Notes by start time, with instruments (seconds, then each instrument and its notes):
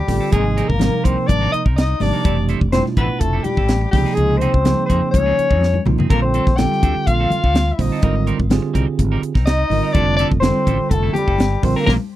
Already playing: trombone G3, soprano saxophone G4
0.08 fretless electric bass A1, tine electric piano D3 G3 C4 F4 A4, muted clean electric guitar stroke, kick, snare, open hi-hat, muted conga
0.20 clean electric guitar C4 D4 A4
0.31 fretless electric bass G#1, tine electric piano C3 F3 A#3 D#4 G#4, clean electric guitar G3 C4 D#4 A#4, trombone G#3, soprano saxophone G#4, kick, closed hi-hat, muted conga
0.45 muted clean electric guitar stroke
0.56 clean electric guitar G3 C4 D#4 A#4, closed hi-hat, muted conga
0.68 fretless electric bass G#1, trombone A#3, soprano saxophone A#4, muted clean electric guitar stroke, kick
0.79 tine electric piano C3 F3 A#3 D#4 A#4, snare, closed hi-hat, high conga
0.93 muted clean electric guitar stroke
1.04 fretless electric bass C2, clean electric guitar G3 C4 D#4 A#4, trombone C4, soprano saxophone C5, kick, closed hi-hat
1.18 muted fretless electric bass stroke, muted clean electric guitar stroke
1.27 fretless electric bass G#1, trombone D4, soprano saxophone D5, muted clean electric guitar stroke, kick, closed hi-hat, muted conga, high conga
1.41 clean electric guitar G3 C4 D#4 A#4
1.52 trombone D#4, soprano saxophone D#5, muted fretless electric bass stroke, closed hi-hat
1.65 fretless electric bass C2, clean electric guitar C4 D#4 A#4, kick
1.76 trombone D#4, soprano saxophone D#5, snare, closed hi-hat
1.89 muted clean electric guitar stroke
2.00 fretless electric bass G#1, tine electric piano C3 F3 A#3 D#4 G4, trombone D4, soprano saxophone D5, muted clean electric guitar stroke, snare, open hi-hat, muted conga, high conga
2.13 clean electric guitar C4 D#4 A#4
2.24 fretless electric bass F1, tine electric piano B2 E3 A3 D4 G4, clean electric guitar G3 C4 E4 A4, kick, closed hi-hat, muted conga
2.38 muted clean electric guitar stroke
2.49 clean electric guitar G3 C4 E4 A4, closed hi-hat, muted conga
2.61 fretless electric bass F1, muted clean electric guitar stroke, kick
2.72 tine electric piano B2 A3 D4 E4 F4, trombone C4, soprano saxophone C5, snare, closed hi-hat, high conga
2.86 muted clean electric guitar stroke, snare
2.97 fretless electric bass A1, clean electric guitar G3 C4 E4 A4, trombone B3, soprano saxophone B4, kick, closed hi-hat
3.09 muted fretless electric bass stroke, muted clean electric guitar stroke
3.19 fretless electric bass F1, trombone A3, soprano saxophone A4, muted clean electric guitar stroke, kick, closed hi-hat, muted conga
3.33 clean electric guitar G3 C4 E4 A4, soprano saxophone A4
3.39 trombone A3
3.43 trombone G3, soprano saxophone G4, muted clean electric guitar stroke, muted fretless electric bass stroke, closed hi-hat, high conga
3.57 fretless electric bass A1, clean electric guitar C4 E4 A4, kick
3.69 snare, closed hi-hat, high conga
3.81 muted clean electric guitar stroke
3.91 fretless electric bass C#2, tine electric piano C3 F3 A#3 D#4 G#4, trombone G3, soprano saxophone G4, muted clean electric guitar stroke, kick, snare, open hi-hat
4.05 clean electric guitar C4 D#4 G#4, snare
4.13 fretless electric bass C#2, trombone G#3, soprano saxophone G#4, closed hi-hat, muted conga
4.30 muted clean electric guitar stroke
4.37 clean electric guitar F3 C4, soprano saxophone C5, closed hi-hat
4.42 trombone C4, clean electric guitar D#4 G#4, muted conga
4.53 fretless electric bass C#2, muted clean electric guitar stroke, kick
4.65 tine electric piano C#3 F3 A#3 D#4 G#4, snare, closed hi-hat, high conga
4.77 muted clean electric guitar stroke
4.86 clean electric guitar F3 C4 D#4 G#4, trombone C4, soprano saxophone C5, kick, closed hi-hat
4.90 fretless electric bass F2
5.02 muted fretless electric bass stroke
5.11 fretless electric bass C#2, trombone C#4, soprano saxophone C#5, muted clean electric guitar stroke, kick, closed hi-hat, muted conga, high conga
5.26 clean electric guitar F3 C4 D#4 G#4
5.39 muted fretless electric bass stroke, closed hi-hat
5.49 fretless electric bass F2, clean electric guitar C4 D#4 G#4, kick, high conga
5.61 snare, high conga
5.74 muted clean electric guitar stroke, high conga
5.86 fretless electric bass C2, tine electric piano C3 F3 A#3 D#4 F4, muted clean electric guitar stroke, mid tom, low conga
5.98 clean electric guitar C4 D#4 G#4, floor tom, low conga
6.09 fretless electric bass A#1, tine electric piano D3 G3 C4 F4 A4, clean electric guitar F3 C4 D4 A4, trombone A#3, soprano saxophone A#4, kick, closed hi-hat
6.22 trombone C4, soprano saxophone C5, muted clean electric guitar stroke
6.34 clean electric guitar F3 C4 D4 A4, closed hi-hat, muted conga
6.46 fretless electric bass A#1, muted clean electric guitar stroke, kick, snare
6.57 tine electric piano D3 G3 C4 F4 A4, trombone G4, soprano saxophone G5, snare, closed hi-hat, high conga
6.72 muted clean electric guitar stroke, snare
6.82 fretless electric bass D2, clean electric guitar F3 C4 D4 A4, kick, closed hi-hat
6.96 muted clean electric guitar stroke
7.06 fretless electric bass A#1, trombone F4, soprano saxophone F5, muted clean electric guitar stroke, kick, closed hi-hat, muted conga
7.20 clean electric guitar F3 C4 D4 A4
7.30 muted fretless electric bass stroke, closed hi-hat, high conga
7.44 fretless electric bass D2, clean electric guitar C4 D4 A4, kick
7.54 snare, closed hi-hat, high conga
7.68 soprano saxophone E5, muted clean electric guitar stroke
7.75 tine electric piano D3 G3 C4, trombone E4, muted conga
7.79 fretless electric bass A#1, trombone D#4, tine electric piano F4 C5, soprano saxophone D#5, muted clean electric guitar stroke, kick, open hi-hat
7.92 clean electric guitar C4 D4 A4
8.02 fretless electric bass G#1, tine electric piano D3 G3 C4 F4 A#4, clean electric guitar G3 C4 D#4 A#4, kick, closed hi-hat, muted conga
8.16 muted clean electric guitar stroke
8.26 clean electric guitar G3 C4 D#4 A#4, closed hi-hat, muted conga
8.39 fretless electric bass G#1, muted clean electric guitar stroke, kick
8.50 tine electric piano D3 C4 F4 G4 G#4, snare, closed hi-hat, high conga
8.62 muted clean electric guitar stroke
8.74 fretless electric bass C2, clean electric guitar G3 C4 D#4 A#4, kick, closed hi-hat
8.87 muted clean electric guitar stroke, muted fretless electric bass stroke
8.99 fretless electric bass G#1, muted clean electric guitar stroke, kick, closed hi-hat, muted conga, high conga
9.12 clean electric guitar G3 C4 D#4 A#4
9.23 muted clean electric guitar stroke, closed hi-hat
9.35 fretless electric bass C2, clean electric guitar C4 D#4 A#4, kick, snare
9.46 trombone D#4, soprano saxophone D#5, snare, closed hi-hat
9.59 muted clean electric guitar stroke
9.70 fretless electric bass G#1, tine electric piano D3 G3 C4 F4 A#4, muted clean electric guitar stroke, open hi-hat, muted conga, high conga
9.83 clean electric guitar C4 D#4 A#4
9.92 fretless electric bass F1, tine electric piano D3 G3 C4 F4 A4, clean electric guitar G3 C4 E4 A4, soprano saxophone D5, kick, closed hi-hat, muted conga
9.96 trombone D4
10.07 muted clean electric guitar stroke
10.16 clean electric guitar G3 C4 E4 A4, trombone D4, soprano saxophone D5, closed hi-hat
10.31 fretless electric bass F1, kick
10.40 tine electric piano D3 G3 C4 F4 A4, soprano saxophone C5, snare, closed hi-hat, high conga
10.45 trombone C4
10.56 muted clean electric guitar stroke
10.66 fretless electric bass A1, clean electric guitar G3 C4 E4 A4, kick, closed hi-hat
10.79 muted clean electric guitar stroke
10.90 fretless electric bass F1, soprano saxophone A4, muted clean electric guitar stroke, kick, closed hi-hat, muted conga
10.94 trombone A3
11.03 clean electric guitar G3 C4 E4 A4
11.13 soprano saxophone G4, muted clean electric guitar stroke, muted fretless electric bass stroke, closed hi-hat, high conga
11.18 trombone G3
11.27 fretless electric bass G1, clean electric guitar C4 E4 A4, kick
11.38 snare, closed hi-hat, high conga
11.52 muted clean electric guitar stroke
11.63 fretless electric bass A#1, tine electric piano D3 G3 C4 F4 A#4, trombone C4, soprano saxophone C5, muted clean electric guitar stroke, kick, open hi-hat
11.76 trombone A#3, clean electric guitar C4 D4 A4, soprano saxophone A#4, snare
11.86 fretless electric bass A#1, tine electric piano A3 A#3 D4, clean electric guitar A#3 D4 F4, trombone A#3, soprano saxophone A#4, kick, snare, high conga